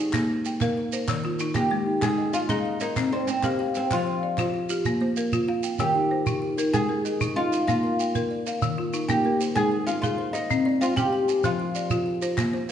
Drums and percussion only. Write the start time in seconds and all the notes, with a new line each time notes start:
0.13 clap, shekere
0.45 shekere
0.61 clap, shekere
0.92 shekere
1.08 clap, shekere
1.39 clap, shekere
1.55 clap, shekere
2.02 clap, shekere
2.34 shekere
2.49 clap, shekere
2.80 shekere
2.96 clap, shekere
3.28 clap, shekere
3.43 clap, shekere
3.75 clap, shekere
3.91 clap, shekere
4.38 clap, shekere
4.69 shekere
4.85 shekere
5.16 shekere
5.32 shekere
5.63 shekere
5.79 shekere
6.26 shekere
6.58 shekere
6.74 shekere
7.05 shekere
7.21 shekere
7.53 shekere
7.69 shekere
7.99 shekere
8.15 shekere
8.47 shekere
8.62 shekere
8.93 shekere
9.09 shekere
9.41 shekere
9.56 shekere
9.87 shekere
10.03 shekere
10.35 shekere
10.50 shekere
10.82 shekere
10.97 shekere
11.29 shekere
11.44 shekere
11.75 shekere
11.90 shekere
12.22 shekere
12.38 clap, shekere